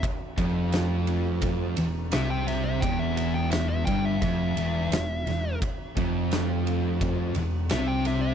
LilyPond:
<<
  \new Staff \with { instrumentName = "Lead electric guitar" } { \time 4/4 \key e \phrygian \tempo 4 = 86 r2. e''16 g''16 e''16 e''16 | g''16 e''16 e''16 g''16 e''16 e''16 g''16 e''16 e''2 | r2. e''16 g''16 e''16 e''16 | }
  \new Staff \with { instrumentName = "Distorted electric guitar" } { \clef bass \time 4/4 \key e \phrygian r8 f,2 e,8 c4 | e,4. g,8 f,8 e,8 e,8 e,8 | r8 f,2 e,8 c4 | }
  \new Staff \with { instrumentName = "Distorted electric guitar" } { \clef bass \time 4/4 \key e \phrygian r8 f,2 e,8 c4 | e,4. g,8 f,8 e,8 e,8 e,8 | r8 f,2 e,8 c4 | }
  \new Staff \with { instrumentName = "Overdriven electric guitar" } { \clef bass \time 4/4 \key e \phrygian r8 f,2 e,8 c4 | e,4. g,8 f,8 e,8 e,8 e,8 | r8 f,2 e,8 c4 | }
  \new Staff \with { instrumentName = "Fingered electric bass" } { \clef bass \time 4/4 \key e \phrygian r8 f,,2 e,,8 c,4 | e,,4. g,,8 f,,8 e,,8 e,,8 e,,8 | r8 f,,2 e,,8 c,4 | }
  \new DrumStaff \with { instrumentName = "Drums" } \drummode { \time 4/4 <bd cymr>8 <bd cymr>8 <cymr sn>8 cymr8 <bd cymr>8 cymr8 <cymr sn>8 <cymr sn>8 | <bd cymr>8 cymr8 <cymr sn>8 <bd cymr>8 <bd cymr>8 cymr8 <cymr sn>8 <cymr sn>8 | <bd cymr>8 <bd cymr>8 <cymr sn>8 cymr8 <bd cymr>8 cymr8 <cymr sn>8 <cymr sn>8 | }
>>